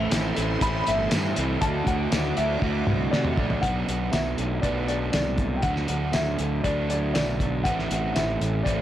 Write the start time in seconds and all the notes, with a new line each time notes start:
Already playing: A2 E3 A3 C4 E4 A4 E5 C6
0.10 A1 A2 E3 A3 C4 E4, snare, closed hi-hat, tambourine
0.36 A1 A2 E3 A3 C4 E4, closed hi-hat
0.61 A1 A2 E3 A3 C4 E4 B5, kick, closed hi-hat
0.87 G1 E5, closed hi-hat
1.11 G2 A2 E3 A3 C4 E4, snare, closed hi-hat, tambourine
1.36 C2 A2 E3 A3 C4 E4, closed hi-hat
1.61 D2 D3 F#3 A3 D4 E4 F#4 A5 D6, kick, closed hi-hat
1.87 D2 F#5, kick, closed hi-hat
2.11 D2 D3 F#3 A3 D4 E4 F#4, snare, closed hi-hat, tambourine
2.37 D2 D3 F#3 A3 D4 E4 F#4 E5, closed hi-hat
2.62 D2 D3 F#3 A3 D4 E4 F#4, kick
2.87 C2, mid tom
3.11 C3 D3 F#3 A3 D4 E4 F#4 D5, snare
3.25 mid tom
3.37 A#1 D3 F#3 A3 D4 E4 F#4, kick
3.50 floor tom
3.61 B1 B2 F#3 B3 D4 F#5, kick, closed hi-hat
3.88 B1, closed hi-hat
4.11 B1 F#3 E5, snare, closed hi-hat, tambourine
4.37 B1 A3, closed hi-hat
4.62 B1 B2 F#3 B3 D4 D5, kick, closed hi-hat
4.87 F#3 D5, closed hi-hat
5.12 C2 A3 D5, snare, closed hi-hat, tambourine
5.38 F#3, kick, closed hi-hat
5.56 G5
5.62 D2 D3 F#3 A3 D4 F#5, kick, closed hi-hat
5.76 snare
5.88 D2, closed hi-hat
6.13 D2 F#3 E5, snare, closed hi-hat, tambourine
6.39 D2 A3, closed hi-hat
6.64 D2 D3 F#3 A3 D4 D5, kick, closed hi-hat
6.89 F#3 D5, closed hi-hat
7.14 B1 A3 D5, snare, closed hi-hat, tambourine
7.39 F#3, kick, closed hi-hat
7.64 A1 A2 E3 A3 C4 E4 F#5, kick, closed hi-hat
7.79 snare
7.91 A1, closed hi-hat
8.14 A1 E3 E5, snare, closed hi-hat, tambourine
8.41 A1 A3, closed hi-hat
8.63 A1 A2 E3 A3 C4 E4 D5, kick, closed hi-hat